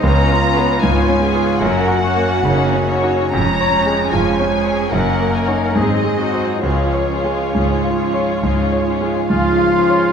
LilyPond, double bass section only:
\new Staff \with { instrumentName = "Double bass section" } { \clef bass \time 4/4 \key des \major \tempo 4 = 71 des,4 des,4 ges,,4 ges,,4 | f,,4 f,,4 ges,,4 aes,,4 | des,4 des,4 des,4 des,4 | }